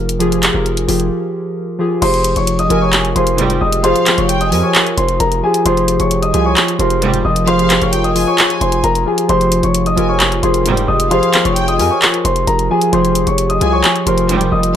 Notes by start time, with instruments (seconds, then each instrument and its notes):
Already playing: 808-style bass F1, synth keys F3 F4 G4 G#4 A#4
0.09 closed hi-hat
0.19 synth keys F3 F4 G4 G#4, closed hi-hat
0.32 closed hi-hat
0.43 clap, closed hi-hat
0.53 808-style bass F1, synth keys F3 F4 G4 A#4
0.66 closed hi-hat
0.77 closed hi-hat
0.87 808-style bass F1, synth keys F3 F4 G4 G#4, open hi-hat
1.00 closed hi-hat
1.79 synth keys F3 F4 G4 G#4
2.01 808-style bass F1, synth keys F3 F4 G4 G#4, analog synth pad F3 F4, grand piano C5 C6, closed hi-hat, crash
2.14 closed hi-hat
2.24 closed hi-hat
2.36 808-style bass F1, grand piano C#5 C#6, closed hi-hat
2.47 closed hi-hat
2.59 grand piano D#5 D#6, closed hi-hat
2.69 808-style bass F1, synth keys F3 F4 G4 A#4, violin section G#5, closed hi-hat
2.82 grand piano C#5 C#6
2.93 clap, closed hi-hat
3.05 closed hi-hat
3.15 808-style bass F1, synth keys F3 F4 G4 G#4, grand piano C5 C6, closed hi-hat
3.27 closed hi-hat
3.38 string section C2 G#2 G3, closed hi-hat
3.50 closed hi-hat
3.61 808-style bass F1, grand piano D#5 D#6
3.72 closed hi-hat
3.83 synth keys F3 F4 G4 G#4, grand piano C5 C6, violin section F5, closed hi-hat
3.96 closed hi-hat
4.06 clap, closed hi-hat
4.17 808-style bass F1, synth keys F3 F4 G4 G#4, grand piano C#5 C#6, closed hi-hat
4.29 violin section G5, closed hi-hat
4.41 grand piano D#5 D#6, closed hi-hat
4.51 808-style bass F2, synth keys F3 F4 G4 A#4, violin section G#5, open hi-hat
4.63 grand piano C#5 C#6
4.75 clap, closed hi-hat
4.87 closed hi-hat
4.97 808-style bass F1, grand piano C5 C6, closed hi-hat
5.09 closed hi-hat
5.20 808-style bass F1, grand piano A#4 A#5, closed hi-hat
5.32 closed hi-hat
5.43 synth keys F3 F4 G4 G#4, grand piano G#4 G#5
5.54 closed hi-hat
5.65 808-style bass F1, synth keys F3 F4 G4 G#4, grand piano C5 C6, closed hi-hat
5.77 closed hi-hat
5.88 closed hi-hat
6.00 808-style bass F1, grand piano C#5 C#6, closed hi-hat
6.11 closed hi-hat
6.22 grand piano D#5 D#6, closed hi-hat
6.33 808-style bass C2, synth keys F3 F4 G4 G#4, violin section G#5, closed hi-hat
6.45 grand piano C#5 C#6
6.57 clap, closed hi-hat
6.68 closed hi-hat
6.78 808-style bass F1, synth keys F3 F4 G4 A#4, grand piano C5 C6, closed hi-hat
6.90 closed hi-hat
7.02 string section C2 G#2 G3, closed hi-hat
7.14 closed hi-hat
7.25 808-style bass F1, grand piano D#5 D#6
7.36 closed hi-hat
7.46 synth keys F3 F4 G4 G#4, grand piano C5 C6, violin section F5, closed hi-hat
7.59 closed hi-hat
7.70 clap, closed hi-hat
7.80 808-style bass F1, synth keys F3 F4 G4 A#4, grand piano C#5 C#6, closed hi-hat
7.93 violin section G5, closed hi-hat
8.04 grand piano D#5 D#6, closed hi-hat
8.15 synth keys F3 F4 G#4, violin section G#5, open hi-hat
8.27 grand piano C#5 C#6
8.38 clap, closed hi-hat
8.50 closed hi-hat
8.61 808-style bass F1, grand piano C5 C6, closed hi-hat
8.72 closed hi-hat
8.84 808-style bass F1, grand piano A#4 A#5, closed hi-hat
8.95 closed hi-hat
9.06 synth keys F3 F4 G4 G#4, grand piano G#4 G#5
9.18 closed hi-hat
9.28 808-style bass F1, synth keys F3 F4 G4 G#4, grand piano C5 C6, closed hi-hat
9.41 closed hi-hat
9.52 closed hi-hat
9.63 808-style bass F1, grand piano C#5 C#6, closed hi-hat
9.74 closed hi-hat
9.86 grand piano D#5 D#6, closed hi-hat
9.96 808-style bass F1, synth keys F3 F4 G4 A#4, violin section G#5, closed hi-hat
10.09 grand piano C#5 C#6
10.20 clap, closed hi-hat
10.32 closed hi-hat
10.42 808-style bass F1, synth keys F3 F4 G4 G#4, grand piano C5 C6, closed hi-hat
10.54 closed hi-hat
10.66 string section C2 G#2 G3, closed hi-hat
10.77 closed hi-hat
10.88 808-style bass F1, grand piano D#5 D#6
11.00 closed hi-hat
11.10 synth keys F3 F4 G4 G#4, grand piano C5 C6, violin section F5, closed hi-hat
11.23 closed hi-hat
11.34 clap, closed hi-hat
11.44 808-style bass F1, synth keys F3 F4 G4 G#4, grand piano C#5 C#6, closed hi-hat
11.56 violin section G5, closed hi-hat
11.68 grand piano D#5 D#6, closed hi-hat
11.79 808-style bass F2, synth keys F3 F4 G4 A#4, violin section G#5, open hi-hat
11.91 grand piano C#5 C#6
12.02 clap, closed hi-hat
12.14 closed hi-hat
12.25 808-style bass F1, grand piano C5 C6, closed hi-hat
12.36 closed hi-hat
12.47 808-style bass F1, grand piano A#4 A#5, closed hi-hat
12.59 closed hi-hat
12.70 synth keys F3 F4 G4 G#4, grand piano G#4 G#5
12.81 closed hi-hat
12.92 808-style bass F1, synth keys F3 F4 G4 G#4, analog synth pad F3 F4, grand piano C5 C6, closed hi-hat
13.05 closed hi-hat
13.15 closed hi-hat
13.27 808-style bass F1, grand piano C#5 C#6, closed hi-hat
13.38 closed hi-hat
13.49 grand piano D#5 D#6, closed hi-hat
13.60 808-style bass C2, synth keys F3 F4 G4 G#4, violin section G#5, closed hi-hat
13.73 grand piano C#5 C#6
13.84 clap, closed hi-hat
13.96 closed hi-hat
14.06 808-style bass F1, synth keys F3 F4 G4 A#4, grand piano C5 C6, closed hi-hat
14.18 closed hi-hat
14.29 string section C2 G#2 G3, closed hi-hat
14.41 closed hi-hat
14.52 808-style bass F1, grand piano D#5 D#6
14.63 closed hi-hat